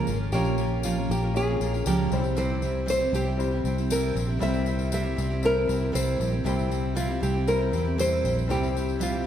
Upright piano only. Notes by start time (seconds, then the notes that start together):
Already playing: A#3 C#4 F4 C#5
0.33 A#3 C#4 F4 C#5
1.34 A#3 C#4 F4 C#5
2.11 G3 C4 C#4 C5
2.18 E4
3.37 G3 C4 E4 C5
4.39 G3 C4 E4 C5
5.42 G3 C4 E4 C5
6.45 G3 C4 E4 C5
7.47 G3 C4 E4 C5
8.48 G3 C4 E4 C5